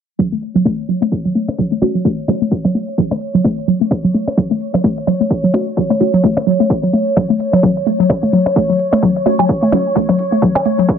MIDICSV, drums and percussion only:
0, 0, Header, 1, 3, 480
1, 0, Start_track
1, 0, Key_signature, 3, "minor"
1, 0, Tempo, 465116
1, 195, Time_signature, 4, 2, 24, 8
1, 11338, End_track
2, 0, Start_track
2, 0, Title_t, "Percussion blips"
2, 195, Note_on_c, 9, 63, 41
2, 298, Note_off_c, 9, 63, 0
2, 675, Note_on_c, 9, 63, 69
2, 778, Note_off_c, 9, 63, 0
2, 1052, Note_on_c, 9, 63, 39
2, 1155, Note_off_c, 9, 63, 0
2, 1532, Note_on_c, 9, 63, 69
2, 1635, Note_off_c, 9, 63, 0
2, 1875, Note_on_c, 9, 63, 41
2, 1979, Note_off_c, 9, 63, 0
2, 2355, Note_on_c, 9, 63, 81
2, 2458, Note_off_c, 9, 63, 0
2, 2732, Note_on_c, 9, 63, 42
2, 2835, Note_off_c, 9, 63, 0
2, 3212, Note_on_c, 9, 63, 77
2, 3315, Note_off_c, 9, 63, 0
2, 3554, Note_on_c, 9, 63, 43
2, 3657, Note_off_c, 9, 63, 0
2, 4034, Note_on_c, 9, 63, 77
2, 4137, Note_off_c, 9, 63, 0
2, 4412, Note_on_c, 9, 63, 42
2, 4515, Note_off_c, 9, 63, 0
2, 4892, Note_on_c, 9, 63, 72
2, 4995, Note_off_c, 9, 63, 0
2, 5235, Note_on_c, 9, 63, 43
2, 5338, Note_off_c, 9, 63, 0
2, 5715, Note_on_c, 9, 63, 76
2, 5818, Note_off_c, 9, 63, 0
2, 6092, Note_on_c, 9, 63, 45
2, 6195, Note_off_c, 9, 63, 0
2, 6572, Note_on_c, 9, 63, 73
2, 6675, Note_off_c, 9, 63, 0
2, 6915, Note_on_c, 9, 63, 41
2, 7018, Note_off_c, 9, 63, 0
2, 7395, Note_on_c, 9, 63, 74
2, 7499, Note_off_c, 9, 63, 0
2, 7773, Note_on_c, 9, 63, 44
2, 7875, Note_off_c, 9, 63, 0
2, 7875, Note_on_c, 9, 63, 42
2, 7978, Note_off_c, 9, 63, 0
2, 8355, Note_on_c, 9, 63, 70
2, 8458, Note_off_c, 9, 63, 0
2, 8732, Note_on_c, 9, 63, 39
2, 8835, Note_off_c, 9, 63, 0
2, 9212, Note_on_c, 9, 63, 70
2, 9315, Note_off_c, 9, 63, 0
2, 9554, Note_on_c, 9, 63, 40
2, 9658, Note_off_c, 9, 63, 0
2, 9692, Note_on_c, 9, 56, 75
2, 9795, Note_off_c, 9, 56, 0
2, 10034, Note_on_c, 9, 63, 74
2, 10138, Note_off_c, 9, 63, 0
2, 10412, Note_on_c, 9, 63, 41
2, 10515, Note_off_c, 9, 63, 0
2, 10891, Note_on_c, 9, 56, 73
2, 10891, Note_on_c, 9, 63, 70
2, 10995, Note_off_c, 9, 56, 0
2, 10995, Note_off_c, 9, 63, 0
2, 11234, Note_on_c, 9, 63, 41
2, 11338, Note_off_c, 9, 63, 0
2, 11338, End_track
3, 0, Start_track
3, 0, Title_t, "Drums"
3, 195, Note_on_c, 9, 36, 106
3, 298, Note_off_c, 9, 36, 0
3, 434, Note_on_c, 9, 42, 84
3, 537, Note_off_c, 9, 42, 0
3, 675, Note_on_c, 9, 36, 96
3, 778, Note_off_c, 9, 36, 0
3, 915, Note_on_c, 9, 42, 83
3, 1018, Note_off_c, 9, 42, 0
3, 1155, Note_on_c, 9, 36, 108
3, 1258, Note_off_c, 9, 36, 0
3, 1395, Note_on_c, 9, 42, 85
3, 1498, Note_off_c, 9, 42, 0
3, 1635, Note_on_c, 9, 36, 97
3, 1738, Note_off_c, 9, 36, 0
3, 1874, Note_on_c, 9, 42, 79
3, 1978, Note_off_c, 9, 42, 0
3, 2115, Note_on_c, 9, 36, 112
3, 2218, Note_off_c, 9, 36, 0
3, 2355, Note_on_c, 9, 42, 87
3, 2458, Note_off_c, 9, 42, 0
3, 2595, Note_on_c, 9, 36, 102
3, 2698, Note_off_c, 9, 36, 0
3, 2834, Note_on_c, 9, 42, 85
3, 2938, Note_off_c, 9, 42, 0
3, 3075, Note_on_c, 9, 36, 110
3, 3178, Note_off_c, 9, 36, 0
3, 3315, Note_on_c, 9, 42, 85
3, 3418, Note_off_c, 9, 42, 0
3, 3555, Note_on_c, 9, 36, 99
3, 3658, Note_off_c, 9, 36, 0
3, 3795, Note_on_c, 9, 42, 85
3, 3898, Note_off_c, 9, 42, 0
3, 4035, Note_on_c, 9, 36, 116
3, 4138, Note_off_c, 9, 36, 0
3, 4274, Note_on_c, 9, 42, 89
3, 4378, Note_off_c, 9, 42, 0
3, 4515, Note_on_c, 9, 36, 104
3, 4618, Note_off_c, 9, 36, 0
3, 4754, Note_on_c, 9, 42, 83
3, 4858, Note_off_c, 9, 42, 0
3, 4994, Note_on_c, 9, 36, 110
3, 5098, Note_off_c, 9, 36, 0
3, 5234, Note_on_c, 9, 42, 89
3, 5337, Note_off_c, 9, 42, 0
3, 5475, Note_on_c, 9, 36, 100
3, 5578, Note_off_c, 9, 36, 0
3, 5715, Note_on_c, 9, 42, 85
3, 5818, Note_off_c, 9, 42, 0
3, 5955, Note_on_c, 9, 36, 115
3, 6058, Note_off_c, 9, 36, 0
3, 6194, Note_on_c, 9, 42, 86
3, 6297, Note_off_c, 9, 42, 0
3, 6435, Note_on_c, 9, 36, 102
3, 6538, Note_off_c, 9, 36, 0
3, 6675, Note_on_c, 9, 42, 86
3, 6778, Note_off_c, 9, 42, 0
3, 6915, Note_on_c, 9, 36, 110
3, 7018, Note_off_c, 9, 36, 0
3, 7155, Note_on_c, 9, 42, 92
3, 7258, Note_off_c, 9, 42, 0
3, 7395, Note_on_c, 9, 36, 101
3, 7498, Note_off_c, 9, 36, 0
3, 7634, Note_on_c, 9, 42, 84
3, 7738, Note_off_c, 9, 42, 0
3, 7875, Note_on_c, 9, 36, 111
3, 7978, Note_off_c, 9, 36, 0
3, 8115, Note_on_c, 9, 42, 82
3, 8218, Note_off_c, 9, 42, 0
3, 8355, Note_on_c, 9, 36, 96
3, 8458, Note_off_c, 9, 36, 0
3, 8595, Note_on_c, 9, 42, 81
3, 8698, Note_off_c, 9, 42, 0
3, 8835, Note_on_c, 9, 36, 109
3, 8938, Note_off_c, 9, 36, 0
3, 9074, Note_on_c, 9, 42, 84
3, 9177, Note_off_c, 9, 42, 0
3, 9315, Note_on_c, 9, 36, 95
3, 9418, Note_off_c, 9, 36, 0
3, 9554, Note_on_c, 9, 42, 85
3, 9657, Note_off_c, 9, 42, 0
3, 9795, Note_on_c, 9, 36, 106
3, 9898, Note_off_c, 9, 36, 0
3, 10034, Note_on_c, 9, 42, 84
3, 10137, Note_off_c, 9, 42, 0
3, 10274, Note_on_c, 9, 36, 96
3, 10378, Note_off_c, 9, 36, 0
3, 10514, Note_on_c, 9, 42, 76
3, 10617, Note_off_c, 9, 42, 0
3, 10754, Note_on_c, 9, 36, 107
3, 10858, Note_off_c, 9, 36, 0
3, 10994, Note_on_c, 9, 42, 80
3, 11098, Note_off_c, 9, 42, 0
3, 11235, Note_on_c, 9, 36, 94
3, 11338, Note_off_c, 9, 36, 0
3, 11338, End_track
0, 0, End_of_file